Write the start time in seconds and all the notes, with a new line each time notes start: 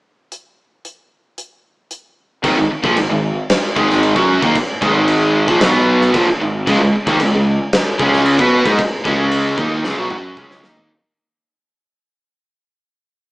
0.32 closed hi-hat
0.85 closed hi-hat
1.38 closed hi-hat
1.91 closed hi-hat
2.43 G#1 G#2 D#3, kick, crash
2.57 G#1 G#2 D#3
2.70 muted distorted electric guitar stroke, muted overdriven electric guitar stroke, muted fingered electric bass stroke
2.83 A#1 A#2 F3, kick
2.96 G#1 G#2 D#3, crash
3.10 G#1 G#2 D#3
3.50 snare, crash
3.75 G#1 G#2 D#3 G#3, kick
3.90 snare
4.03 crash
4.15 F#2 F#3 C#4 F#4, kick
4.42 D#2 D#3 A#3, kick
4.55 muted distorted electric guitar stroke, muted fingered electric bass stroke, muted overdriven electric guitar stroke, kick, crash
4.81 G#1 G#2 D#3 G#3, kick
5.08 crash
5.48 A#1 A#2 F3, kick
5.60 B1 B2 F#3 B3, snare, crash
6.01 snare
6.13 A#1 A#2 F3, kick, crash
6.27 muted distorted electric guitar stroke, muted overdriven electric guitar stroke, muted fingered electric bass stroke
6.40 G#1 G#2 D#3
6.66 C#2 C#3 G#3, kick, crash
6.79 C#2 C#3 G#3
6.93 muted distorted electric guitar stroke, muted fingered electric bass stroke, muted overdriven electric guitar stroke
7.06 D#2 D#3 A#3, kick
7.19 C#2 C#3 G#3, crash
7.32 C#2 C#3 G#3
7.73 snare, crash
7.98 C#2 C#3 G#3 C#4, kick
8.13 snare
8.26 crash
8.38 B2 B3 F#4 B4, kick
8.64 G#2 G#3 D#4, kick
8.78 muted distorted electric guitar stroke, muted fingered electric bass stroke, muted overdriven electric guitar stroke, kick, crash
9.04 C#2 C#3 G#3 C#4, kick
9.31 crash
9.56 D#2 D#3 A#3 D#4, kick
9.84 C#2 C#3 G#3, snare
9.97 B1 B2 F#3
10.10 F#2 F#3 C#4 F#4, mid tom
10.37 C#2 C#3 G#3 C#4, kick
10.51 snare
10.62 D#2 D#3 A#3 D#4, snare
10.77 floor tom